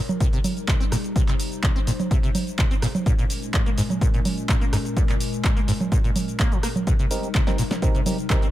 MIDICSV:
0, 0, Header, 1, 5, 480
1, 0, Start_track
1, 0, Tempo, 476190
1, 1166, Time_signature, 4, 2, 24, 8
1, 8579, End_track
2, 0, Start_track
2, 0, Title_t, "Synth stab"
2, 0, Program_c, 0, 62
2, 7165, Note_on_c, 0, 60, 98
2, 7165, Note_on_c, 0, 63, 90
2, 7165, Note_on_c, 0, 67, 89
2, 7165, Note_on_c, 0, 70, 105
2, 7343, Note_off_c, 0, 60, 0
2, 7343, Note_off_c, 0, 63, 0
2, 7343, Note_off_c, 0, 67, 0
2, 7343, Note_off_c, 0, 70, 0
2, 7530, Note_on_c, 0, 60, 98
2, 7530, Note_on_c, 0, 63, 89
2, 7530, Note_on_c, 0, 67, 90
2, 7530, Note_on_c, 0, 70, 104
2, 7635, Note_off_c, 0, 60, 0
2, 7635, Note_off_c, 0, 63, 0
2, 7635, Note_off_c, 0, 67, 0
2, 7635, Note_off_c, 0, 70, 0
2, 7886, Note_on_c, 0, 60, 96
2, 7886, Note_on_c, 0, 63, 88
2, 7886, Note_on_c, 0, 67, 85
2, 7886, Note_on_c, 0, 70, 105
2, 8063, Note_off_c, 0, 60, 0
2, 8063, Note_off_c, 0, 63, 0
2, 8063, Note_off_c, 0, 70, 0
2, 8064, Note_off_c, 0, 67, 0
2, 8126, Note_on_c, 0, 60, 81
2, 8126, Note_on_c, 0, 63, 72
2, 8126, Note_on_c, 0, 67, 77
2, 8126, Note_on_c, 0, 70, 93
2, 8240, Note_off_c, 0, 60, 0
2, 8240, Note_off_c, 0, 63, 0
2, 8240, Note_off_c, 0, 67, 0
2, 8240, Note_off_c, 0, 70, 0
2, 8366, Note_on_c, 0, 60, 91
2, 8366, Note_on_c, 0, 63, 81
2, 8366, Note_on_c, 0, 67, 83
2, 8366, Note_on_c, 0, 70, 98
2, 8544, Note_off_c, 0, 60, 0
2, 8544, Note_off_c, 0, 63, 0
2, 8544, Note_off_c, 0, 67, 0
2, 8544, Note_off_c, 0, 70, 0
2, 8579, End_track
3, 0, Start_track
3, 0, Title_t, "Ambient pad"
3, 0, Program_c, 1, 92
3, 0, Note_on_c, 1, 48, 85
3, 0, Note_on_c, 1, 55, 78
3, 0, Note_on_c, 1, 63, 75
3, 0, Note_on_c, 1, 70, 92
3, 1147, Note_off_c, 1, 70, 0
3, 1167, Note_on_c, 1, 72, 91
3, 3048, Note_off_c, 1, 48, 0
3, 3048, Note_off_c, 1, 55, 0
3, 3048, Note_off_c, 1, 63, 0
3, 3067, Note_off_c, 1, 72, 0
3, 3088, Note_on_c, 1, 46, 82
3, 3088, Note_on_c, 1, 56, 76
3, 3088, Note_on_c, 1, 61, 76
3, 3088, Note_on_c, 1, 70, 89
3, 6888, Note_off_c, 1, 46, 0
3, 6888, Note_off_c, 1, 56, 0
3, 6888, Note_off_c, 1, 61, 0
3, 6924, Note_on_c, 1, 48, 82
3, 6924, Note_on_c, 1, 55, 77
3, 6925, Note_on_c, 1, 63, 77
3, 8579, Note_off_c, 1, 48, 0
3, 8579, Note_off_c, 1, 55, 0
3, 8579, Note_off_c, 1, 63, 0
3, 8579, Note_off_c, 1, 70, 0
3, 8579, End_track
4, 0, Start_track
4, 0, Title_t, "Acid bass"
4, 0, Program_c, 2, 38
4, 205, Note_on_c, 2, 48, 82
4, 274, Note_off_c, 2, 48, 0
4, 331, Note_on_c, 2, 48, 75
4, 394, Note_off_c, 2, 48, 0
4, 685, Note_on_c, 2, 48, 82
4, 754, Note_off_c, 2, 48, 0
4, 810, Note_on_c, 2, 60, 76
4, 848, Note_off_c, 2, 60, 0
4, 925, Note_on_c, 2, 46, 100
4, 967, Note_off_c, 2, 46, 0
4, 1166, Note_on_c, 2, 48, 83
4, 1235, Note_off_c, 2, 48, 0
4, 1291, Note_on_c, 2, 48, 77
4, 1354, Note_off_c, 2, 48, 0
4, 1646, Note_on_c, 2, 48, 77
4, 1715, Note_off_c, 2, 48, 0
4, 1771, Note_on_c, 2, 60, 73
4, 1809, Note_off_c, 2, 60, 0
4, 1886, Note_on_c, 2, 46, 102
4, 1927, Note_off_c, 2, 46, 0
4, 2126, Note_on_c, 2, 48, 80
4, 2195, Note_off_c, 2, 48, 0
4, 2251, Note_on_c, 2, 48, 75
4, 2314, Note_off_c, 2, 48, 0
4, 2606, Note_on_c, 2, 48, 80
4, 2675, Note_off_c, 2, 48, 0
4, 2731, Note_on_c, 2, 60, 77
4, 2769, Note_off_c, 2, 60, 0
4, 2845, Note_on_c, 2, 46, 100
4, 2887, Note_off_c, 2, 46, 0
4, 3086, Note_on_c, 2, 46, 84
4, 3155, Note_off_c, 2, 46, 0
4, 3211, Note_on_c, 2, 46, 74
4, 3274, Note_off_c, 2, 46, 0
4, 3566, Note_on_c, 2, 46, 77
4, 3635, Note_off_c, 2, 46, 0
4, 3691, Note_on_c, 2, 58, 74
4, 3729, Note_off_c, 2, 58, 0
4, 3806, Note_on_c, 2, 44, 102
4, 3847, Note_off_c, 2, 44, 0
4, 4047, Note_on_c, 2, 46, 78
4, 4115, Note_off_c, 2, 46, 0
4, 4171, Note_on_c, 2, 46, 75
4, 4234, Note_off_c, 2, 46, 0
4, 4525, Note_on_c, 2, 46, 78
4, 4595, Note_off_c, 2, 46, 0
4, 4650, Note_on_c, 2, 58, 76
4, 4688, Note_off_c, 2, 58, 0
4, 4765, Note_on_c, 2, 44, 102
4, 4807, Note_off_c, 2, 44, 0
4, 5005, Note_on_c, 2, 46, 84
4, 5074, Note_off_c, 2, 46, 0
4, 5129, Note_on_c, 2, 46, 75
4, 5193, Note_off_c, 2, 46, 0
4, 5486, Note_on_c, 2, 46, 77
4, 5555, Note_off_c, 2, 46, 0
4, 5610, Note_on_c, 2, 58, 76
4, 5648, Note_off_c, 2, 58, 0
4, 5724, Note_on_c, 2, 44, 102
4, 5766, Note_off_c, 2, 44, 0
4, 5966, Note_on_c, 2, 46, 81
4, 6035, Note_off_c, 2, 46, 0
4, 6091, Note_on_c, 2, 46, 77
4, 6154, Note_off_c, 2, 46, 0
4, 6445, Note_on_c, 2, 58, 81
4, 6570, Note_on_c, 2, 53, 99
4, 6586, Note_off_c, 2, 58, 0
4, 6634, Note_off_c, 2, 53, 0
4, 6685, Note_on_c, 2, 58, 74
4, 6727, Note_off_c, 2, 58, 0
4, 6926, Note_on_c, 2, 48, 83
4, 6995, Note_off_c, 2, 48, 0
4, 7051, Note_on_c, 2, 48, 77
4, 7114, Note_off_c, 2, 48, 0
4, 7406, Note_on_c, 2, 48, 74
4, 7475, Note_off_c, 2, 48, 0
4, 7530, Note_on_c, 2, 60, 77
4, 7568, Note_off_c, 2, 60, 0
4, 7646, Note_on_c, 2, 46, 100
4, 7687, Note_off_c, 2, 46, 0
4, 7886, Note_on_c, 2, 48, 84
4, 7955, Note_off_c, 2, 48, 0
4, 8011, Note_on_c, 2, 48, 76
4, 8074, Note_off_c, 2, 48, 0
4, 8367, Note_on_c, 2, 48, 81
4, 8435, Note_off_c, 2, 48, 0
4, 8492, Note_on_c, 2, 60, 77
4, 8530, Note_off_c, 2, 60, 0
4, 8579, End_track
5, 0, Start_track
5, 0, Title_t, "Drums"
5, 92, Note_on_c, 9, 64, 90
5, 98, Note_on_c, 9, 82, 31
5, 193, Note_off_c, 9, 64, 0
5, 199, Note_off_c, 9, 82, 0
5, 206, Note_on_c, 9, 36, 108
5, 206, Note_on_c, 9, 42, 66
5, 212, Note_on_c, 9, 82, 42
5, 307, Note_off_c, 9, 36, 0
5, 307, Note_off_c, 9, 42, 0
5, 313, Note_off_c, 9, 82, 0
5, 331, Note_on_c, 9, 42, 38
5, 337, Note_on_c, 9, 82, 21
5, 432, Note_off_c, 9, 42, 0
5, 438, Note_off_c, 9, 82, 0
5, 446, Note_on_c, 9, 46, 99
5, 446, Note_on_c, 9, 64, 88
5, 452, Note_on_c, 9, 82, 73
5, 547, Note_off_c, 9, 46, 0
5, 547, Note_off_c, 9, 64, 0
5, 553, Note_off_c, 9, 82, 0
5, 572, Note_on_c, 9, 42, 41
5, 578, Note_on_c, 9, 82, 32
5, 673, Note_off_c, 9, 42, 0
5, 679, Note_off_c, 9, 82, 0
5, 687, Note_on_c, 9, 36, 118
5, 687, Note_on_c, 9, 42, 66
5, 691, Note_on_c, 9, 39, 120
5, 693, Note_on_c, 9, 82, 43
5, 787, Note_off_c, 9, 36, 0
5, 788, Note_off_c, 9, 42, 0
5, 792, Note_off_c, 9, 39, 0
5, 794, Note_off_c, 9, 82, 0
5, 812, Note_on_c, 9, 42, 40
5, 818, Note_on_c, 9, 82, 22
5, 913, Note_off_c, 9, 42, 0
5, 919, Note_off_c, 9, 82, 0
5, 927, Note_on_c, 9, 37, 62
5, 927, Note_on_c, 9, 46, 104
5, 933, Note_on_c, 9, 82, 76
5, 1028, Note_off_c, 9, 37, 0
5, 1028, Note_off_c, 9, 46, 0
5, 1034, Note_off_c, 9, 82, 0
5, 1052, Note_on_c, 9, 42, 40
5, 1058, Note_on_c, 9, 82, 32
5, 1153, Note_off_c, 9, 42, 0
5, 1159, Note_off_c, 9, 82, 0
5, 1166, Note_on_c, 9, 36, 116
5, 1167, Note_on_c, 9, 42, 63
5, 1173, Note_on_c, 9, 82, 41
5, 1267, Note_off_c, 9, 36, 0
5, 1268, Note_off_c, 9, 42, 0
5, 1274, Note_off_c, 9, 82, 0
5, 1292, Note_on_c, 9, 42, 39
5, 1296, Note_on_c, 9, 39, 36
5, 1298, Note_on_c, 9, 82, 21
5, 1393, Note_off_c, 9, 42, 0
5, 1397, Note_off_c, 9, 39, 0
5, 1399, Note_off_c, 9, 82, 0
5, 1406, Note_on_c, 9, 46, 104
5, 1412, Note_on_c, 9, 82, 73
5, 1507, Note_off_c, 9, 46, 0
5, 1513, Note_off_c, 9, 82, 0
5, 1532, Note_on_c, 9, 42, 37
5, 1538, Note_on_c, 9, 82, 30
5, 1632, Note_off_c, 9, 42, 0
5, 1638, Note_off_c, 9, 82, 0
5, 1646, Note_on_c, 9, 36, 117
5, 1646, Note_on_c, 9, 42, 60
5, 1650, Note_on_c, 9, 39, 116
5, 1652, Note_on_c, 9, 82, 41
5, 1747, Note_off_c, 9, 36, 0
5, 1747, Note_off_c, 9, 42, 0
5, 1751, Note_off_c, 9, 39, 0
5, 1753, Note_off_c, 9, 82, 0
5, 1772, Note_on_c, 9, 42, 38
5, 1778, Note_on_c, 9, 82, 20
5, 1873, Note_off_c, 9, 42, 0
5, 1879, Note_off_c, 9, 82, 0
5, 1887, Note_on_c, 9, 46, 101
5, 1893, Note_on_c, 9, 82, 68
5, 1987, Note_off_c, 9, 46, 0
5, 1993, Note_off_c, 9, 82, 0
5, 2012, Note_on_c, 9, 42, 38
5, 2012, Note_on_c, 9, 64, 89
5, 2018, Note_on_c, 9, 82, 31
5, 2112, Note_off_c, 9, 42, 0
5, 2112, Note_off_c, 9, 64, 0
5, 2118, Note_off_c, 9, 82, 0
5, 2126, Note_on_c, 9, 36, 114
5, 2127, Note_on_c, 9, 42, 63
5, 2133, Note_on_c, 9, 82, 42
5, 2227, Note_off_c, 9, 36, 0
5, 2228, Note_off_c, 9, 42, 0
5, 2234, Note_off_c, 9, 82, 0
5, 2252, Note_on_c, 9, 42, 39
5, 2258, Note_on_c, 9, 82, 20
5, 2353, Note_off_c, 9, 42, 0
5, 2359, Note_off_c, 9, 82, 0
5, 2366, Note_on_c, 9, 46, 108
5, 2366, Note_on_c, 9, 64, 91
5, 2372, Note_on_c, 9, 82, 73
5, 2467, Note_off_c, 9, 46, 0
5, 2467, Note_off_c, 9, 64, 0
5, 2473, Note_off_c, 9, 82, 0
5, 2491, Note_on_c, 9, 42, 40
5, 2497, Note_on_c, 9, 82, 31
5, 2592, Note_off_c, 9, 42, 0
5, 2598, Note_off_c, 9, 82, 0
5, 2606, Note_on_c, 9, 36, 121
5, 2606, Note_on_c, 9, 42, 66
5, 2610, Note_on_c, 9, 39, 120
5, 2612, Note_on_c, 9, 82, 42
5, 2707, Note_off_c, 9, 36, 0
5, 2707, Note_off_c, 9, 42, 0
5, 2711, Note_off_c, 9, 39, 0
5, 2713, Note_off_c, 9, 82, 0
5, 2731, Note_on_c, 9, 42, 38
5, 2737, Note_on_c, 9, 82, 21
5, 2832, Note_off_c, 9, 42, 0
5, 2838, Note_off_c, 9, 82, 0
5, 2846, Note_on_c, 9, 37, 63
5, 2846, Note_on_c, 9, 46, 106
5, 2852, Note_on_c, 9, 82, 72
5, 2947, Note_off_c, 9, 37, 0
5, 2947, Note_off_c, 9, 46, 0
5, 2953, Note_off_c, 9, 82, 0
5, 2971, Note_on_c, 9, 42, 39
5, 2971, Note_on_c, 9, 64, 90
5, 2977, Note_on_c, 9, 82, 31
5, 3072, Note_off_c, 9, 42, 0
5, 3072, Note_off_c, 9, 64, 0
5, 3078, Note_off_c, 9, 82, 0
5, 3086, Note_on_c, 9, 36, 122
5, 3086, Note_on_c, 9, 42, 63
5, 3092, Note_on_c, 9, 82, 42
5, 3187, Note_off_c, 9, 36, 0
5, 3187, Note_off_c, 9, 42, 0
5, 3193, Note_off_c, 9, 82, 0
5, 3211, Note_on_c, 9, 42, 38
5, 3217, Note_on_c, 9, 82, 21
5, 3312, Note_off_c, 9, 42, 0
5, 3318, Note_off_c, 9, 82, 0
5, 3326, Note_on_c, 9, 46, 109
5, 3332, Note_on_c, 9, 82, 71
5, 3427, Note_off_c, 9, 46, 0
5, 3433, Note_off_c, 9, 82, 0
5, 3451, Note_on_c, 9, 42, 37
5, 3457, Note_on_c, 9, 82, 30
5, 3552, Note_off_c, 9, 42, 0
5, 3558, Note_off_c, 9, 82, 0
5, 3566, Note_on_c, 9, 36, 115
5, 3566, Note_on_c, 9, 42, 60
5, 3570, Note_on_c, 9, 39, 116
5, 3572, Note_on_c, 9, 82, 39
5, 3667, Note_off_c, 9, 36, 0
5, 3667, Note_off_c, 9, 42, 0
5, 3671, Note_off_c, 9, 39, 0
5, 3673, Note_off_c, 9, 82, 0
5, 3691, Note_on_c, 9, 42, 38
5, 3697, Note_on_c, 9, 82, 20
5, 3792, Note_off_c, 9, 42, 0
5, 3798, Note_off_c, 9, 82, 0
5, 3806, Note_on_c, 9, 46, 104
5, 3812, Note_on_c, 9, 82, 69
5, 3907, Note_off_c, 9, 46, 0
5, 3913, Note_off_c, 9, 82, 0
5, 3932, Note_on_c, 9, 42, 37
5, 3932, Note_on_c, 9, 64, 86
5, 3937, Note_on_c, 9, 82, 32
5, 4032, Note_off_c, 9, 42, 0
5, 4032, Note_off_c, 9, 64, 0
5, 4038, Note_off_c, 9, 82, 0
5, 4046, Note_on_c, 9, 36, 121
5, 4047, Note_on_c, 9, 42, 60
5, 4053, Note_on_c, 9, 82, 40
5, 4147, Note_off_c, 9, 36, 0
5, 4147, Note_off_c, 9, 42, 0
5, 4153, Note_off_c, 9, 82, 0
5, 4171, Note_on_c, 9, 42, 37
5, 4177, Note_on_c, 9, 82, 20
5, 4272, Note_off_c, 9, 42, 0
5, 4278, Note_off_c, 9, 82, 0
5, 4286, Note_on_c, 9, 46, 109
5, 4286, Note_on_c, 9, 64, 88
5, 4292, Note_on_c, 9, 82, 74
5, 4387, Note_off_c, 9, 46, 0
5, 4387, Note_off_c, 9, 64, 0
5, 4393, Note_off_c, 9, 82, 0
5, 4411, Note_on_c, 9, 42, 38
5, 4417, Note_on_c, 9, 82, 32
5, 4512, Note_off_c, 9, 42, 0
5, 4518, Note_off_c, 9, 82, 0
5, 4526, Note_on_c, 9, 36, 125
5, 4526, Note_on_c, 9, 42, 64
5, 4530, Note_on_c, 9, 39, 119
5, 4532, Note_on_c, 9, 82, 41
5, 4627, Note_off_c, 9, 36, 0
5, 4627, Note_off_c, 9, 42, 0
5, 4631, Note_off_c, 9, 39, 0
5, 4633, Note_off_c, 9, 82, 0
5, 4651, Note_on_c, 9, 42, 37
5, 4657, Note_on_c, 9, 82, 21
5, 4752, Note_off_c, 9, 42, 0
5, 4758, Note_off_c, 9, 82, 0
5, 4766, Note_on_c, 9, 37, 65
5, 4766, Note_on_c, 9, 46, 110
5, 4772, Note_on_c, 9, 82, 74
5, 4867, Note_off_c, 9, 37, 0
5, 4867, Note_off_c, 9, 46, 0
5, 4873, Note_off_c, 9, 82, 0
5, 4891, Note_on_c, 9, 42, 37
5, 4897, Note_on_c, 9, 82, 31
5, 4992, Note_off_c, 9, 42, 0
5, 4998, Note_off_c, 9, 82, 0
5, 5006, Note_on_c, 9, 36, 118
5, 5006, Note_on_c, 9, 42, 60
5, 5012, Note_on_c, 9, 82, 42
5, 5107, Note_off_c, 9, 36, 0
5, 5107, Note_off_c, 9, 42, 0
5, 5112, Note_off_c, 9, 82, 0
5, 5131, Note_on_c, 9, 42, 37
5, 5135, Note_on_c, 9, 39, 36
5, 5137, Note_on_c, 9, 82, 21
5, 5232, Note_off_c, 9, 42, 0
5, 5235, Note_off_c, 9, 39, 0
5, 5238, Note_off_c, 9, 82, 0
5, 5246, Note_on_c, 9, 46, 108
5, 5252, Note_on_c, 9, 82, 74
5, 5347, Note_off_c, 9, 46, 0
5, 5353, Note_off_c, 9, 82, 0
5, 5371, Note_on_c, 9, 42, 36
5, 5377, Note_on_c, 9, 82, 31
5, 5472, Note_off_c, 9, 42, 0
5, 5478, Note_off_c, 9, 82, 0
5, 5486, Note_on_c, 9, 36, 117
5, 5486, Note_on_c, 9, 42, 59
5, 5490, Note_on_c, 9, 39, 106
5, 5492, Note_on_c, 9, 82, 40
5, 5587, Note_off_c, 9, 36, 0
5, 5587, Note_off_c, 9, 42, 0
5, 5591, Note_off_c, 9, 39, 0
5, 5593, Note_off_c, 9, 82, 0
5, 5611, Note_on_c, 9, 42, 38
5, 5617, Note_on_c, 9, 82, 21
5, 5712, Note_off_c, 9, 42, 0
5, 5718, Note_off_c, 9, 82, 0
5, 5726, Note_on_c, 9, 46, 102
5, 5732, Note_on_c, 9, 82, 70
5, 5827, Note_off_c, 9, 46, 0
5, 5833, Note_off_c, 9, 82, 0
5, 5851, Note_on_c, 9, 42, 35
5, 5851, Note_on_c, 9, 64, 82
5, 5857, Note_on_c, 9, 82, 30
5, 5952, Note_off_c, 9, 42, 0
5, 5952, Note_off_c, 9, 64, 0
5, 5958, Note_off_c, 9, 82, 0
5, 5966, Note_on_c, 9, 36, 118
5, 5966, Note_on_c, 9, 42, 61
5, 5972, Note_on_c, 9, 82, 41
5, 6067, Note_off_c, 9, 36, 0
5, 6067, Note_off_c, 9, 42, 0
5, 6073, Note_off_c, 9, 82, 0
5, 6091, Note_on_c, 9, 42, 35
5, 6097, Note_on_c, 9, 82, 21
5, 6192, Note_off_c, 9, 42, 0
5, 6198, Note_off_c, 9, 82, 0
5, 6206, Note_on_c, 9, 46, 105
5, 6206, Note_on_c, 9, 64, 82
5, 6212, Note_on_c, 9, 82, 73
5, 6306, Note_off_c, 9, 46, 0
5, 6306, Note_off_c, 9, 64, 0
5, 6312, Note_off_c, 9, 82, 0
5, 6331, Note_on_c, 9, 42, 36
5, 6337, Note_on_c, 9, 82, 32
5, 6431, Note_off_c, 9, 42, 0
5, 6437, Note_off_c, 9, 82, 0
5, 6446, Note_on_c, 9, 36, 122
5, 6446, Note_on_c, 9, 42, 61
5, 6449, Note_on_c, 9, 39, 112
5, 6452, Note_on_c, 9, 82, 43
5, 6546, Note_off_c, 9, 42, 0
5, 6547, Note_off_c, 9, 36, 0
5, 6550, Note_off_c, 9, 39, 0
5, 6552, Note_off_c, 9, 82, 0
5, 6570, Note_on_c, 9, 42, 38
5, 6576, Note_on_c, 9, 82, 22
5, 6671, Note_off_c, 9, 42, 0
5, 6677, Note_off_c, 9, 82, 0
5, 6685, Note_on_c, 9, 37, 67
5, 6685, Note_on_c, 9, 46, 106
5, 6691, Note_on_c, 9, 82, 75
5, 6786, Note_off_c, 9, 37, 0
5, 6786, Note_off_c, 9, 46, 0
5, 6792, Note_off_c, 9, 82, 0
5, 6810, Note_on_c, 9, 64, 83
5, 6816, Note_on_c, 9, 82, 32
5, 6911, Note_off_c, 9, 64, 0
5, 6916, Note_off_c, 9, 82, 0
5, 6925, Note_on_c, 9, 42, 62
5, 6926, Note_on_c, 9, 36, 115
5, 6931, Note_on_c, 9, 82, 45
5, 7026, Note_off_c, 9, 42, 0
5, 7027, Note_off_c, 9, 36, 0
5, 7032, Note_off_c, 9, 82, 0
5, 7049, Note_on_c, 9, 42, 38
5, 7055, Note_on_c, 9, 82, 22
5, 7150, Note_off_c, 9, 42, 0
5, 7156, Note_off_c, 9, 82, 0
5, 7164, Note_on_c, 9, 46, 101
5, 7170, Note_on_c, 9, 82, 78
5, 7265, Note_off_c, 9, 46, 0
5, 7271, Note_off_c, 9, 82, 0
5, 7290, Note_on_c, 9, 42, 36
5, 7296, Note_on_c, 9, 82, 33
5, 7391, Note_off_c, 9, 42, 0
5, 7397, Note_off_c, 9, 82, 0
5, 7405, Note_on_c, 9, 42, 61
5, 7406, Note_on_c, 9, 36, 111
5, 7409, Note_on_c, 9, 39, 108
5, 7411, Note_on_c, 9, 82, 43
5, 7506, Note_off_c, 9, 36, 0
5, 7506, Note_off_c, 9, 42, 0
5, 7509, Note_off_c, 9, 39, 0
5, 7512, Note_off_c, 9, 82, 0
5, 7529, Note_on_c, 9, 38, 61
5, 7529, Note_on_c, 9, 42, 36
5, 7535, Note_on_c, 9, 82, 22
5, 7630, Note_off_c, 9, 38, 0
5, 7630, Note_off_c, 9, 42, 0
5, 7636, Note_off_c, 9, 82, 0
5, 7644, Note_on_c, 9, 46, 95
5, 7650, Note_on_c, 9, 82, 75
5, 7745, Note_off_c, 9, 46, 0
5, 7751, Note_off_c, 9, 82, 0
5, 7770, Note_on_c, 9, 38, 81
5, 7770, Note_on_c, 9, 42, 36
5, 7770, Note_on_c, 9, 64, 83
5, 7776, Note_on_c, 9, 82, 31
5, 7871, Note_off_c, 9, 38, 0
5, 7871, Note_off_c, 9, 42, 0
5, 7871, Note_off_c, 9, 64, 0
5, 7877, Note_off_c, 9, 82, 0
5, 7885, Note_on_c, 9, 42, 61
5, 7886, Note_on_c, 9, 36, 112
5, 7891, Note_on_c, 9, 82, 44
5, 7986, Note_off_c, 9, 36, 0
5, 7986, Note_off_c, 9, 42, 0
5, 7992, Note_off_c, 9, 82, 0
5, 8010, Note_on_c, 9, 42, 36
5, 8016, Note_on_c, 9, 82, 22
5, 8111, Note_off_c, 9, 42, 0
5, 8117, Note_off_c, 9, 82, 0
5, 8124, Note_on_c, 9, 46, 100
5, 8124, Note_on_c, 9, 64, 86
5, 8130, Note_on_c, 9, 82, 79
5, 8225, Note_off_c, 9, 46, 0
5, 8225, Note_off_c, 9, 64, 0
5, 8231, Note_off_c, 9, 82, 0
5, 8249, Note_on_c, 9, 42, 38
5, 8255, Note_on_c, 9, 82, 33
5, 8350, Note_off_c, 9, 42, 0
5, 8356, Note_off_c, 9, 82, 0
5, 8365, Note_on_c, 9, 42, 61
5, 8366, Note_on_c, 9, 36, 119
5, 8368, Note_on_c, 9, 39, 110
5, 8371, Note_on_c, 9, 82, 44
5, 8465, Note_off_c, 9, 42, 0
5, 8467, Note_off_c, 9, 36, 0
5, 8469, Note_off_c, 9, 39, 0
5, 8471, Note_off_c, 9, 82, 0
5, 8490, Note_on_c, 9, 42, 39
5, 8496, Note_on_c, 9, 82, 22
5, 8579, Note_off_c, 9, 42, 0
5, 8579, Note_off_c, 9, 82, 0
5, 8579, End_track
0, 0, End_of_file